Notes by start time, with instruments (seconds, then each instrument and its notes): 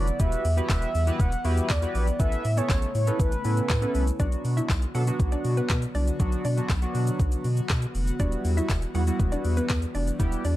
Already playing: sub bass F1, analog synth pad D3 F#3 B3 E4, soft synth lead D5
0.07 closed hi-hat, shaker
0.20 sub bass E1, analog synth pad E3 G3 B3 F#5, analog polysynth B3 E4 F#4 G4 B4, soft synth lead E5, kick, closed hi-hat, shaker
0.32 closed hi-hat, shaker
0.45 sub bass E2, open hi-hat, shaker
0.57 analog polysynth B3 E4 F#4 G4 B4, closed hi-hat, shaker
0.69 sub bass E1, soft synth lead E5, kick, snare, clap, closed hi-hat, tambourine, shaker
0.82 closed hi-hat, shaker
0.95 sub bass E2, open hi-hat, shaker
1.07 analog polysynth B3 E4 F#4 G4 B4, closed hi-hat, shaker
1.20 sub bass E1, soft synth lead F#5, kick, closed hi-hat, shaker
1.32 closed hi-hat, shaker
1.44 sub bass E2, analog polysynth B3 E4 F#4 G4 B4, soft synth lead E5, open hi-hat, shaker
1.57 closed hi-hat, shaker
1.70 sub bass E2, soft synth lead D5, kick, snare, clap, closed hi-hat, tambourine, shaker
1.82 analog polysynth B3 E4 F#4 G4 B4, closed hi-hat, shaker
1.95 sub bass A#1, open hi-hat, shaker
2.07 closed hi-hat, shaker
2.19 sub bass A1, analog synth pad C#3 A3 E4, analog polysynth B3 C#4 E4 A4 B4, soft synth lead E5, kick, closed hi-hat, shaker
2.32 closed hi-hat, shaker
2.45 sub bass A2, open hi-hat, shaker
2.57 analog polysynth B3 C#4 E4 A4 C#5, soft synth lead C#5, closed hi-hat, shaker
2.69 sub bass A1, kick, snare, clap, closed hi-hat, tambourine, shaker
2.82 closed hi-hat, shaker
2.95 sub bass A2, soft synth lead C#5, open hi-hat, shaker
3.07 analog polysynth B3 C#4 E4 A4 B4, closed hi-hat, shaker
3.20 sub bass A1, soft synth lead B4, kick, closed hi-hat, shaker
3.32 closed hi-hat, shaker
3.44 sub bass A2, analog polysynth B3 C#4 E4 A4 B4, open hi-hat, shaker
3.57 closed hi-hat, shaker
3.69 sub bass A2, kick, snare, clap, closed hi-hat, tambourine, shaker
3.82 analog polysynth B3 C#4 E4 A4 B4, closed hi-hat, shaker
3.95 sub bass C2, open hi-hat, shaker
4.07 closed hi-hat, shaker
4.20 sub bass B1, analog synth pad D3 F#3 B3 F#4, analog polysynth F#3 B3 D4 F#4, synth pluck D4 D5, kick, closed hi-hat, shaker
4.32 closed hi-hat, shaker
4.45 sub bass B2, open hi-hat, shaker
4.57 synth pluck E4 E5, closed hi-hat, shaker
4.69 sub bass B1, kick, snare, clap, closed hi-hat, tambourine, shaker
4.82 closed hi-hat, shaker
4.95 sub bass B2, analog polysynth F#3 B3 D4 A4, synth pluck F#4 F#5, open hi-hat, shaker
5.07 analog polysynth F#3 B3 D4 F#4, closed hi-hat, shaker
5.20 sub bass B1, kick, closed hi-hat, shaker
5.32 synth pluck D4 D5, closed hi-hat, shaker
5.45 sub bass B2, open hi-hat, shaker
5.57 synth pluck B3 B4, closed hi-hat, shaker
5.69 sub bass B2, synth pluck B3 B4, kick, snare, clap, closed hi-hat, tambourine, shaker
5.82 closed hi-hat, shaker
5.95 sub bass C2, synth pluck D4 D5, open hi-hat, shaker
6.07 closed hi-hat, shaker
6.19 sub bass B1, analog polysynth F#3 B3 D4 F#4, kick, closed hi-hat, shaker
6.32 closed hi-hat, shaker
6.45 sub bass B2, synth pluck D4 D5, open hi-hat, shaker
6.57 analog polysynth F#3 B3 D4 F#4, closed hi-hat, shaker
6.69 sub bass B1, kick, snare, clap, closed hi-hat, tambourine, shaker
6.82 analog polysynth F#3 B3 D4 F#4, closed hi-hat, shaker
6.95 sub bass B2, open hi-hat, shaker
7.07 closed hi-hat, shaker
7.19 sub bass B1, kick, closed hi-hat, shaker
7.32 closed hi-hat, shaker
7.44 sub bass B2, open hi-hat, shaker
7.57 closed hi-hat, shaker
7.69 sub bass B2, kick, snare, clap, closed hi-hat, tambourine, shaker
7.82 closed hi-hat, shaker
7.95 sub bass F1, open hi-hat, shaker
8.07 closed hi-hat, shaker
8.19 sub bass E1, analog synth pad E3 G3, analog polysynth G3 B3 E4 F#4, synth pluck D4 D5, kick, closed hi-hat, shaker
8.32 closed hi-hat, shaker
8.45 sub bass E2, open hi-hat, shaker
8.57 synth pluck E4 E5, closed hi-hat, shaker
8.69 sub bass E1, kick, snare, clap, closed hi-hat, tambourine, shaker
8.82 closed hi-hat, shaker
8.94 sub bass E2, analog polysynth G3 B3 E4 F#4, synth pluck F#4 F#5, open hi-hat, shaker
9.07 analog polysynth G3 B3 E4 F#4, closed hi-hat, shaker
9.19 sub bass E1, kick, closed hi-hat, shaker
9.32 synth pluck D4 D5, closed hi-hat, shaker
9.45 sub bass E2, open hi-hat, shaker
9.57 synth pluck B3 B4, closed hi-hat, shaker
9.69 sub bass E2, synth pluck B3 B4, kick, snare, clap, closed hi-hat, tambourine, shaker
9.82 closed hi-hat, shaker
9.95 sub bass F1, synth pluck D4 D5, open hi-hat, shaker
10.07 closed hi-hat, shaker
10.19 sub bass E1, analog polysynth G3 B3 E4 G4, kick, closed hi-hat, shaker
10.32 closed hi-hat, shaker
10.45 sub bass E2, synth pluck D4 D5, open hi-hat, shaker